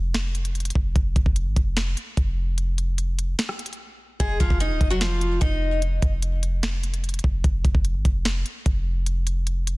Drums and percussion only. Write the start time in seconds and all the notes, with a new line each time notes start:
0.14 finger snap, snare, closed hi-hat
0.35 closed hi-hat
0.45 closed hi-hat
0.55 closed hi-hat
0.60 closed hi-hat
0.65 closed hi-hat
0.70 closed hi-hat
0.75 kick
0.96 kick, closed hi-hat
1.16 kick, closed hi-hat
1.26 kick
1.36 closed hi-hat
1.56 kick, closed hi-hat
1.77 finger snap, snare, closed hi-hat
1.97 closed hi-hat
2.17 kick, closed hi-hat
2.58 closed hi-hat
2.78 closed hi-hat
2.98 closed hi-hat
3.19 closed hi-hat
3.39 finger snap, snare, closed hi-hat
3.49 cross-stick
3.59 closed hi-hat
3.66 closed hi-hat
3.73 closed hi-hat
4.20 kick, closed hi-hat
4.40 kick, closed hi-hat
4.50 kick
4.60 closed hi-hat
4.81 kick, closed hi-hat
5.01 finger snap, snare, closed hi-hat
5.21 closed hi-hat
5.42 kick, closed hi-hat
5.82 closed hi-hat
6.02 kick, closed hi-hat
6.22 closed hi-hat
6.43 closed hi-hat
6.63 finger snap, snare, closed hi-hat
6.83 closed hi-hat
6.94 closed hi-hat
7.04 closed hi-hat
7.09 closed hi-hat
7.14 closed hi-hat
7.19 closed hi-hat
7.24 kick
7.44 kick, closed hi-hat
7.65 kick, closed hi-hat
7.75 kick
7.85 closed hi-hat
8.05 kick, closed hi-hat
8.25 finger snap, snare, closed hi-hat
8.46 closed hi-hat
8.66 kick, closed hi-hat
9.06 closed hi-hat
9.27 closed hi-hat
9.47 closed hi-hat
9.67 closed hi-hat